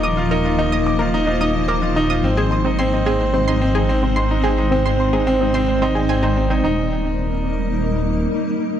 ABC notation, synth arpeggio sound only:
X:1
M:4/4
L:1/16
Q:1/4=109
K:Eb
V:1 name="Synth arpeggio sound"
e' z B z E e' z B z E e' z B z E e' | z A z C c' z A z C c' z A z C c' z | A z C c' z A z C c' z C A a E z C | E2 z12 z2 |]